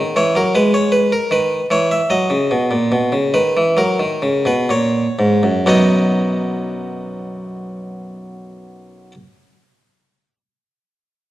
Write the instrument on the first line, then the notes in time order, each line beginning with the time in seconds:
harpsichord
Already playing: D#3
0.16 E3 C#5
0.35 F#3 A#4
0.55 G#3 B4
0.74 C#5
0.92 B4
1.12 A#4
1.31 D#3 B4
1.71 E3 C#5
1.91 E5
2.10 F#3 D#5
2.30 C#3
2.51 B2
2.71 A#2
2.92 B2
3.12 C#3
3.34 D#3 B4
3.57 E3
3.77 F#3 A#4
4.00 D#3
4.22 C#3
4.45 B2 B4
4.69 A#2 C#5
5.19 G#2
5.43 F#2
5.66 B1 F#2 F#3 B3 D#4 F#4 D#5